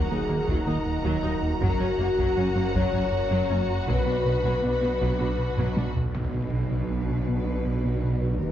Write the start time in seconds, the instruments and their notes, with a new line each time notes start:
Already playing: detuned saw bass D#1, analog synth pad F#3 D#4 F#4 A#4, viola section F#4, violin section F#5 A#5
0.10 cello section D#2, analog synth bass D#3, synth arpeggio sound A#3, viola section D#4, french horn section G#4
0.29 cello section D#2, analog synth bass D#3, viola section A#3, synth arpeggio sound A#3
0.48 analog synth bass D#2, cello section D#2, synth arpeggio sound D#3, viola section F#3, french horn section D#4, taiko
0.67 cello section D#2, analog synth bass D#3, synth arpeggio sound A#3, viola section D#4
0.86 analog synth bass D#2
1.04 cello section D#2, analog synth bass D#2, synth arpeggio sound D#3, viola section F#3
1.23 cello section D#2, analog synth bass D#2, synth arpeggio sound F#3, viola section D#4
1.42 analog synth bass D#2
1.60 detuned saw bass F#1, analog synth bass F#2, cello section F#2, viola section F#3 F#4, analog synth pad F#3 C#4 F#4, synth arpeggio sound F#3, french horn section F#4, violin section F#5, taiko
1.80 cello section F#2, analog synth bass F#3, viola section C#4, synth arpeggio sound C#4
1.98 cello section F#2, analog synth bass F#2, viola section A#3, synth arpeggio sound F#4
2.17 cello section F#2, analog synth bass F#2, viola section F#3, synth arpeggio sound F#3, taiko
2.36 cello section F#2, analog synth bass F#3, viola section C#4, synth arpeggio sound C#4
2.55 cello section F#2, analog synth bass F#3, viola section A#3, synth arpeggio sound C#4
2.74 cello section F#2, analog synth bass F#2, viola section F#3, synth arpeggio sound F#3, french horn section C#5, taiko
2.92 cello section F#2, analog synth bass F#3, viola section C#4, synth arpeggio sound C#4
3.12 analog synth bass F#2
3.30 cello section F#2, analog synth bass F#2, viola section F#3, synth arpeggio sound F#3
3.50 cello section F#2, analog synth bass F#2, synth arpeggio sound A#3, viola section C#4
3.68 analog synth bass F#2
3.87 detuned saw bass B1, analog synth bass B2, cello section B2, viola section F#3, synth arpeggio sound B3, analog synth pad D4 B4, french horn section B4, violin section B5, taiko
4.06 cello section B2, analog synth bass B3, viola section D4, synth arpeggio sound F#4
4.25 cello section B2, analog synth bass B2, viola section B3, synth arpeggio sound B4
4.43 analog synth bass B2, cello section B2, viola section F#3, synth arpeggio sound B3, taiko
4.62 cello section B2, analog synth bass B3, viola section D4, synth arpeggio sound F#4
4.81 cello section B2, analog synth bass B3, viola section B3, synth arpeggio sound F#4
5.01 cello section B2, analog synth bass B2, viola section F#3, synth arpeggio sound B3, taiko
5.19 cello section B2, analog synth bass B3, viola section D4, synth arpeggio sound F#4
5.39 analog synth bass B2
5.57 cello section B2, analog synth bass B2, viola section F#3, synth arpeggio sound B3, taiko low-mid
5.76 cello section B2, analog synth bass B2, viola section D4, synth arpeggio sound D4, taiko high
5.95 analog synth bass B2, taiko low
6.14 detuned saw bass B1, tuba B1, double bass section B1, cello section B2, analog synth bass B2, french horn section F#3 D4, analog synth pad F#3 D4 F#4 B4, synth arpeggio sound B3, viola section F#4, violin section B4 D5, taiko, impact
6.34 analog synth bass B2, synth arpeggio sound D4
6.53 analog synth bass B2, synth arpeggio sound B4
6.71 analog synth bass B2, synth arpeggio sound B3
6.91 analog synth bass B3
7.09 analog synth bass B2, synth arpeggio sound B4
7.27 analog synth bass B2, synth arpeggio sound B3
7.47 analog synth bass B3
7.65 analog synth bass B2, synth arpeggio sound B4
7.84 analog synth bass B2, synth arpeggio sound B3, taiko
8.03 analog synth bass B2, synth arpeggio sound B4
8.22 analog synth bass B2, synth arpeggio sound B4
8.40 detuned saw bass D#1, cello section D#2, tuba D#2, analog synth bass D#2, double bass section D#2, synth arpeggio sound D#3, french horn section A#3 F#4, analog synth pad D#4 A#4, violin section A#4 D#5